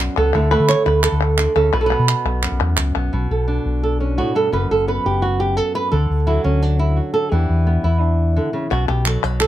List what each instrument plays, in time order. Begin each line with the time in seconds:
Already playing: nylon-string guitar F#2 B3 F#4 D5
0.17 fingered electric bass C#2, nylon-string guitar B3 A4
0.34 fingered electric bass D2, nylon-string guitar D3 A3 E4
0.51 nylon-string guitar A3 B4
0.60 fingered electric bass D3
0.69 nylon-string guitar C#5, clap
0.86 fingered electric bass D2, nylon-string guitar B4
1.03 nylon-string guitar D3 A4, clap
1.12 fingered electric bass D2
1.38 nylon-string guitar D3, clap
1.56 fingered electric bass D2, nylon-string guitar C#3 A4
1.73 fingered electric bass B1, nylon-string guitar B2 B4
1.81 nylon-string guitar A4
1.86 nylon-string guitar B4
1.90 nylon-string guitar B3
1.99 fingered electric bass B2
2.08 clap
2.25 fingered electric bass B1
2.43 nylon-string guitar F#2, clap
2.52 fingered electric bass B1
2.60 fingered electric bass E2
2.77 fingered electric bass C#2, clap
2.95 fingered electric bass B1, nylon-string guitar B3
3.13 fingered electric bass B1, nylon-string guitar B2
3.30 fingered electric bass B1, nylon-string guitar A4
3.48 nylon-string guitar D4
3.65 fingered electric bass B1
3.83 nylon-string guitar A4
4.00 nylon-string guitar C#4
4.18 nylon-string guitar A2 F#4
4.35 nylon-string guitar G2 A4
4.53 fingered electric bass F#1, nylon-string guitar F#2 B4
4.70 fingered electric bass F#1, nylon-string guitar A4
4.88 nylon-string guitar B3 B4
5.06 fingered electric bass F#1, nylon-string guitar G4
5.22 nylon-string guitar F#4
5.40 nylon-string guitar G4
5.57 nylon-string guitar A4
5.75 nylon-string guitar B4
5.92 fingered electric bass D2, nylon-string guitar D3 A4
6.10 fingered electric bass D2
6.27 nylon-string guitar F#3 E4
6.44 fingered electric bass D2, nylon-string guitar C#4
6.62 nylon-string guitar D4
6.79 nylon-string guitar E4
6.96 nylon-string guitar F#4
7.14 nylon-string guitar A4
7.32 fingered electric bass E2, nylon-string guitar E3 B3 D4 G4
7.49 fingered electric bass E2
7.67 nylon-string guitar B3
7.84 fingered electric bass E2, nylon-string guitar E4
8.01 nylon-string guitar D4
8.36 nylon-string guitar D3
8.53 nylon-string guitar C#3
8.70 fingered electric bass B1, nylon-string guitar B2 F#4
8.88 fingered electric bass B1, nylon-string guitar G4
9.05 nylon-string guitar F#3 A4, clap
9.24 fingered electric bass B1, nylon-string guitar B4
9.40 nylon-string guitar A4, clap